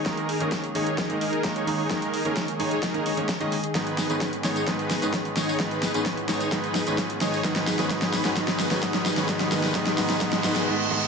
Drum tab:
HH |xxoxxxoxxxoxxxo-|xxoxxxoxxxoxxxox|xxoxxxoxxxoxxxo-|xxoxxxoxxxoxxxo-|
TB |----------------|----------------|x-xxx-xxx-xxx-xx|x-xxx-xxx-xxx-xx|
SD |o---o---o---o---|o---o---o---o---|o-o-o-o-o-o-o-o-|o-o-o-o-o-o-o-o-|
BD |o---o---o---o---|o---o---o---o---|o---o---o---o---|o---o---o---o---|

HH |xxoxxxoxxxoxxxo-|xxoxxxoxxxox----|
TB |x-xxx-xxx-xxx-xx|x-xxx-xxx-xx----|
SD |oooooooooooooooo|oooooooooooo----|
BD |o---o---o---o---|o---o---o-------|